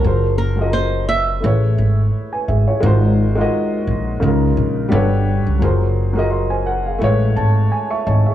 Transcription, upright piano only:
0.02 F#3 F4 G#4 A#4
0.07 C5
0.56 F#3 F4 G#4
0.60 A4 D#5
0.66 A#4
1.41 A3 E4 G#4
1.45 B4 C#5
2.33 B4 G#5
2.48 G#4 E5
2.68 E4 C#5
2.80 G#3 D#4 F4 F#4
2.85 A#4 C5
3.35 G#3 D#4 F4 F#4
3.40 A#4 D#5
4.20 C#3 G#3 D#4
4.24 F4 A#4
4.89 G3 D4 F#4 A4
4.93 B4 C#5
5.59 F#3 F4 G#4
5.63 A#4 C5
6.13 F#3 F4 G#4
6.17 A#4 D#5
6.31 D#5 C6
6.50 C5 G#5
6.66 A#4 F#5
6.86 G#4 F5
6.99 G#3 A3 E4 B4
7.04 C#5
7.36 A5
7.72 G#5
7.91 E5 C#6
8.07 C#5 D#5 A5
8.26 G#4 E5

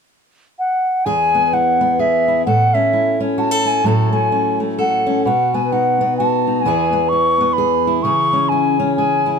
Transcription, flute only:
0.59 F#5
1.05 G#5
1.54 F#5
2.00 E5
2.46 F#5
2.74 E5
3.39 A5
3.67 G#5
3.86 A5
4.13 G#5
4.80 F#5
5.25 F#5
5.54 G#5
5.72 F#5
6.17 A5
6.61 G#5
7.09 C#6
7.53 B5
8.03 C#6
8.49 G#5
8.96 G#5

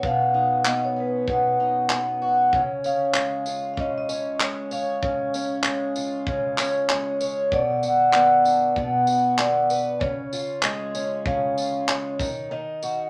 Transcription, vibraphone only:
0.06 F5
0.68 D#5
0.85 C#5
1.00 B4
2.86 F5
3.74 F5
3.80 D#5
3.98 D#5
4.43 C#5
4.73 F5
6.90 C#5
7.53 D5
8.14 D5
8.78 F#5
9.40 D5
10.00 C#5
10.64 D#5
11.27 F5
11.90 C#5
12.52 D#5

